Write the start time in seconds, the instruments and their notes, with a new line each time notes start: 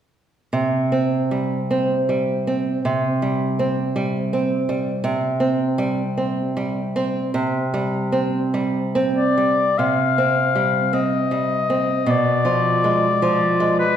0.53 nylon-string guitar C3
0.92 nylon-string guitar C4
1.31 nylon-string guitar G3
1.71 nylon-string guitar C4
2.09 nylon-string guitar G3
2.47 nylon-string guitar C4
2.85 nylon-string guitar C3
3.22 nylon-string guitar G3
3.59 nylon-string guitar C4
3.96 nylon-string guitar G3
4.33 nylon-string guitar C4
4.69 nylon-string guitar G3
5.04 nylon-string guitar C3
5.40 nylon-string guitar C4
5.78 nylon-string guitar G3
6.17 nylon-string guitar C4
6.57 nylon-string guitar G3
6.96 nylon-string guitar C4
7.34 nylon-string guitar C3
7.74 nylon-string guitar G3
8.12 nylon-string guitar C4
8.54 nylon-string guitar G3
8.95 nylon-string guitar C4
9.16 oboe D5
9.37 nylon-string guitar G3
9.78 nylon-string guitar C3, oboe F5
10.18 nylon-string guitar C4
10.55 nylon-string guitar G3
10.93 nylon-string guitar C4, oboe D#5
11.31 nylon-string guitar G3
11.70 nylon-string guitar C4
12.06 nylon-string guitar B2, oboe D5
12.45 nylon-string guitar F3
12.84 nylon-string guitar G#3
13.22 nylon-string guitar F3
13.60 nylon-string guitar G#3
13.79 oboe B4